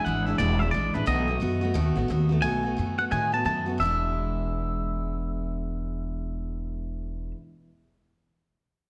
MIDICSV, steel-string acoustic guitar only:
0, 0, Header, 1, 2, 480
1, 0, Start_track
1, 0, Tempo, 340716
1, 1516, Time_signature, 4, 2, 24, 8
1, 12535, End_track
2, 0, Start_track
2, 0, Title_t, "Steel-string acoustic guitar"
2, 0, Program_c, 0, 25
2, 73, Note_on_c, 0, 52, 63
2, 83, Note_on_c, 0, 56, 65
2, 101, Note_on_c, 0, 62, 64
2, 116, Note_on_c, 0, 64, 68
2, 356, Note_off_c, 0, 64, 0
2, 370, Note_off_c, 0, 62, 0
2, 373, Note_on_c, 0, 64, 56
2, 376, Note_off_c, 0, 52, 0
2, 381, Note_off_c, 0, 56, 0
2, 387, Note_on_c, 0, 62, 57
2, 402, Note_on_c, 0, 56, 49
2, 419, Note_on_c, 0, 52, 50
2, 539, Note_on_c, 0, 40, 84
2, 541, Note_off_c, 0, 52, 0
2, 543, Note_off_c, 0, 62, 0
2, 545, Note_off_c, 0, 56, 0
2, 548, Note_on_c, 0, 47, 84
2, 555, Note_off_c, 0, 64, 0
2, 557, Note_on_c, 0, 52, 88
2, 560, Note_on_c, 0, 62, 89
2, 562, Note_on_c, 0, 56, 84
2, 570, Note_on_c, 0, 64, 94
2, 826, Note_off_c, 0, 64, 0
2, 843, Note_on_c, 0, 64, 57
2, 848, Note_off_c, 0, 40, 0
2, 852, Note_off_c, 0, 47, 0
2, 853, Note_off_c, 0, 62, 0
2, 857, Note_off_c, 0, 52, 0
2, 860, Note_off_c, 0, 56, 0
2, 870, Note_on_c, 0, 62, 48
2, 878, Note_on_c, 0, 56, 46
2, 888, Note_on_c, 0, 52, 49
2, 1007, Note_off_c, 0, 52, 0
2, 1024, Note_on_c, 0, 52, 60
2, 1027, Note_off_c, 0, 56, 0
2, 1030, Note_off_c, 0, 64, 0
2, 1036, Note_off_c, 0, 62, 0
2, 1044, Note_on_c, 0, 56, 67
2, 1053, Note_on_c, 0, 62, 66
2, 1067, Note_on_c, 0, 64, 64
2, 1304, Note_off_c, 0, 64, 0
2, 1315, Note_off_c, 0, 62, 0
2, 1320, Note_on_c, 0, 64, 58
2, 1328, Note_off_c, 0, 56, 0
2, 1330, Note_off_c, 0, 52, 0
2, 1332, Note_on_c, 0, 62, 55
2, 1345, Note_on_c, 0, 56, 48
2, 1358, Note_on_c, 0, 52, 45
2, 1491, Note_on_c, 0, 47, 89
2, 1495, Note_off_c, 0, 52, 0
2, 1500, Note_on_c, 0, 51, 100
2, 1502, Note_off_c, 0, 56, 0
2, 1504, Note_off_c, 0, 62, 0
2, 1508, Note_off_c, 0, 64, 0
2, 1508, Note_on_c, 0, 57, 95
2, 1510, Note_on_c, 0, 59, 97
2, 1522, Note_on_c, 0, 66, 95
2, 1782, Note_off_c, 0, 66, 0
2, 1799, Note_on_c, 0, 66, 55
2, 1803, Note_off_c, 0, 47, 0
2, 1804, Note_off_c, 0, 59, 0
2, 1807, Note_off_c, 0, 51, 0
2, 1811, Note_off_c, 0, 57, 0
2, 1821, Note_on_c, 0, 59, 48
2, 1838, Note_on_c, 0, 57, 44
2, 1968, Note_on_c, 0, 51, 63
2, 1969, Note_off_c, 0, 57, 0
2, 1982, Note_off_c, 0, 59, 0
2, 1986, Note_off_c, 0, 66, 0
2, 1986, Note_on_c, 0, 57, 66
2, 1999, Note_on_c, 0, 59, 67
2, 2007, Note_on_c, 0, 66, 77
2, 2252, Note_off_c, 0, 66, 0
2, 2269, Note_on_c, 0, 66, 62
2, 2275, Note_off_c, 0, 59, 0
2, 2281, Note_off_c, 0, 51, 0
2, 2289, Note_off_c, 0, 57, 0
2, 2292, Note_on_c, 0, 59, 56
2, 2317, Note_on_c, 0, 57, 51
2, 2451, Note_on_c, 0, 47, 94
2, 2452, Note_off_c, 0, 57, 0
2, 2455, Note_on_c, 0, 51, 97
2, 2456, Note_off_c, 0, 59, 0
2, 2461, Note_off_c, 0, 66, 0
2, 2468, Note_on_c, 0, 57, 94
2, 2473, Note_on_c, 0, 59, 91
2, 2477, Note_on_c, 0, 66, 90
2, 2738, Note_off_c, 0, 66, 0
2, 2754, Note_on_c, 0, 66, 66
2, 2759, Note_off_c, 0, 59, 0
2, 2761, Note_off_c, 0, 47, 0
2, 2763, Note_off_c, 0, 51, 0
2, 2770, Note_off_c, 0, 57, 0
2, 2775, Note_on_c, 0, 59, 58
2, 2797, Note_on_c, 0, 57, 52
2, 2933, Note_on_c, 0, 51, 69
2, 2935, Note_off_c, 0, 57, 0
2, 2943, Note_off_c, 0, 66, 0
2, 2951, Note_on_c, 0, 57, 67
2, 2953, Note_off_c, 0, 59, 0
2, 2968, Note_on_c, 0, 59, 72
2, 2980, Note_on_c, 0, 66, 74
2, 3210, Note_off_c, 0, 66, 0
2, 3227, Note_on_c, 0, 66, 61
2, 3234, Note_off_c, 0, 59, 0
2, 3242, Note_off_c, 0, 51, 0
2, 3251, Note_off_c, 0, 57, 0
2, 3251, Note_on_c, 0, 59, 54
2, 3271, Note_on_c, 0, 57, 52
2, 3408, Note_off_c, 0, 57, 0
2, 3408, Note_on_c, 0, 47, 82
2, 3416, Note_off_c, 0, 59, 0
2, 3419, Note_off_c, 0, 66, 0
2, 3421, Note_on_c, 0, 51, 90
2, 3425, Note_on_c, 0, 57, 80
2, 3433, Note_on_c, 0, 59, 98
2, 3435, Note_on_c, 0, 66, 87
2, 3687, Note_off_c, 0, 66, 0
2, 3704, Note_on_c, 0, 66, 57
2, 3713, Note_off_c, 0, 59, 0
2, 3719, Note_off_c, 0, 47, 0
2, 3726, Note_off_c, 0, 51, 0
2, 3728, Note_off_c, 0, 57, 0
2, 3730, Note_on_c, 0, 59, 47
2, 3752, Note_on_c, 0, 57, 44
2, 3896, Note_on_c, 0, 51, 63
2, 3897, Note_off_c, 0, 66, 0
2, 3898, Note_off_c, 0, 57, 0
2, 3910, Note_off_c, 0, 59, 0
2, 3915, Note_on_c, 0, 57, 58
2, 3928, Note_on_c, 0, 59, 65
2, 3941, Note_on_c, 0, 66, 69
2, 4182, Note_off_c, 0, 66, 0
2, 4199, Note_on_c, 0, 66, 53
2, 4203, Note_off_c, 0, 51, 0
2, 4211, Note_off_c, 0, 59, 0
2, 4212, Note_off_c, 0, 57, 0
2, 4228, Note_on_c, 0, 59, 49
2, 4241, Note_on_c, 0, 57, 47
2, 4377, Note_off_c, 0, 57, 0
2, 4384, Note_off_c, 0, 66, 0
2, 4384, Note_on_c, 0, 47, 82
2, 4391, Note_off_c, 0, 59, 0
2, 4392, Note_on_c, 0, 51, 82
2, 4394, Note_on_c, 0, 57, 81
2, 4407, Note_on_c, 0, 66, 86
2, 4408, Note_on_c, 0, 59, 87
2, 4663, Note_off_c, 0, 66, 0
2, 4680, Note_on_c, 0, 66, 57
2, 4685, Note_off_c, 0, 59, 0
2, 4687, Note_off_c, 0, 47, 0
2, 4691, Note_off_c, 0, 51, 0
2, 4691, Note_off_c, 0, 57, 0
2, 4702, Note_on_c, 0, 59, 54
2, 4723, Note_on_c, 0, 57, 46
2, 4855, Note_on_c, 0, 51, 57
2, 4860, Note_off_c, 0, 57, 0
2, 4865, Note_off_c, 0, 66, 0
2, 4870, Note_off_c, 0, 59, 0
2, 4877, Note_on_c, 0, 57, 61
2, 4887, Note_on_c, 0, 59, 64
2, 4900, Note_on_c, 0, 66, 67
2, 5139, Note_off_c, 0, 66, 0
2, 5155, Note_on_c, 0, 66, 54
2, 5158, Note_off_c, 0, 59, 0
2, 5162, Note_off_c, 0, 51, 0
2, 5173, Note_off_c, 0, 57, 0
2, 5175, Note_on_c, 0, 59, 46
2, 5202, Note_on_c, 0, 57, 49
2, 5324, Note_on_c, 0, 40, 79
2, 5342, Note_off_c, 0, 66, 0
2, 5352, Note_off_c, 0, 59, 0
2, 5355, Note_on_c, 0, 47, 80
2, 5365, Note_off_c, 0, 57, 0
2, 5371, Note_on_c, 0, 52, 90
2, 5389, Note_on_c, 0, 56, 96
2, 5415, Note_on_c, 0, 62, 86
2, 5429, Note_on_c, 0, 64, 100
2, 10327, Note_off_c, 0, 40, 0
2, 10358, Note_off_c, 0, 47, 0
2, 10374, Note_off_c, 0, 52, 0
2, 10392, Note_off_c, 0, 56, 0
2, 10418, Note_off_c, 0, 62, 0
2, 10432, Note_off_c, 0, 64, 0
2, 12535, End_track
0, 0, End_of_file